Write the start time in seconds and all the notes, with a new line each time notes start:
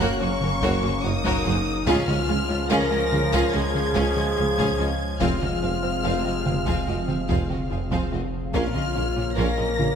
Already playing: F#1 C#3 A#3 C#4 F#4 A#4 C#5 F#6
0.00 F#2 F#3 A#3 F#4 A#4 C#5, taiko
0.20 F#1 F#2 A#3 C#4 F#4 G#4 C5 C#6
0.41 F#2 A#3 C#4 F#4 A#4 C#5, taiko mid
0.62 F#1 F#2 F#3 A#3 F#4 A#4 C#5, taiko
0.83 F#2 A#3 C#4 F#4 G#4 C5, taiko mid
1.04 F#1 F#2 A#3 D#4 F#4 A#4 C#5 D#6
1.24 F#2 F#3 A#3 F#4 A#4 C#5, taiko
1.45 F#1 F#2 A#3 F#4 G#4 C5
1.87 C#2 C#3 F3 C#4 F4 G#4 C#5 F5 F6, taiko
2.07 C#2 G#3 C#4 F4 F#4 D#5, taiko mid
2.29 C#2 G#3 C#4 F4 G#4 F5
2.49 C#2 G#3 C#4 F4 C#5
2.70 C#2 C#3 C#4 F4 G#4 A#4 F5 A#6
2.91 C#2 G#3 C#4 F4 F#4 D#5
3.11 C#2 G#3 C#4 F4 G#4 F5, taiko mid
3.32 C#2 C#3 C#4 F4 G#4 F5, taiko
3.53 C#2 G#3 C#4 F4 F#4 G#4 D#5 G#6
3.74 C#2 G#3 C#4 F4 G#4 F5, taiko mid
3.94 C#2 C#3 C#4 F4 G#4 F5, taiko
4.16 C#2 G#3 C#4 F4 F#4 D#5, taiko mid
4.37 C#2 C#4 F4 G#4 F5
4.58 C#2 C#3 C#4 F4 G#4 F5, taiko
4.79 C#2 C#4 F4 F#4 D#5
5.20 F1 F2 C3 F3 G#3 C4 F4 G#4 F5 F6, taiko
5.41 F2 C4 F4 F#4 D#5, taiko mid
5.62 F1 F2 C4 F4 G#4 F5
5.83 F2 C4 F4 C5
6.04 F1 F2 F3 C4 F4 G#4 F5
6.25 F2 C4 F4 F#4 D#5
6.45 F1 F2 C4 F4 G#4 F5, taiko mid
6.66 F2 F3 C4 F4 G#4 F5, taiko
6.87 F1 F2 C4 F4 F#4 D#5
7.08 F2 C4 F4 G#4 F5, taiko mid
7.29 F1 F2 F3 C4 F4 G#4 F5, taiko
7.49 F2 C4 F4 F#4 D#5, taiko mid
7.70 F1 F2 C4 F4 G#4 F5
7.91 F2 F3 C4 F4 G#4 F5, taiko
8.12 F1 F2 C4 F4 F#4 D#5
8.54 A#1 A#2 C#3 F3 A#3 C#4 F4 A#4 C#5 F5 F6, taiko
8.74 A#2 C#4 F4 G#4 D#5, taiko mid
8.95 A#1 A#2 C#4 F4 A#4 F5
9.16 A#2 C#4 F4 C#5
9.36 A#1 A#2 A#3 C#4 F4 A#4 F5 A#6
9.57 A#2 C#4 F4 G#4 D#5
9.77 A#1 A#2 C#4 F4 A#4 F5, taiko mid